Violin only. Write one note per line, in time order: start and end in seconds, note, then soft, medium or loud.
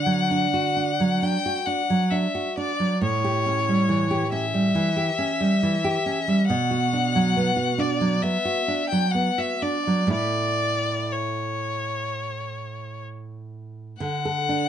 0.00 1.25 F#5 medium
1.23 1.68 G5 medium
1.66 2.12 F#5 medium
2.11 2.57 E5 medium
2.58 3.02 D5 medium
3.04 4.30 C#5 medium
4.33 6.45 E5 medium
6.47 7.81 F#5 medium
7.79 8.24 D5 medium
8.22 8.89 E5 medium
8.89 9.13 G5 medium
9.11 9.40 F#5 medium
9.38 9.64 E5 medium
9.62 10.12 D5 medium
10.12 11.14 D5 medium
11.12 13.03 C#5 medium
13.99 14.69 F#5 medium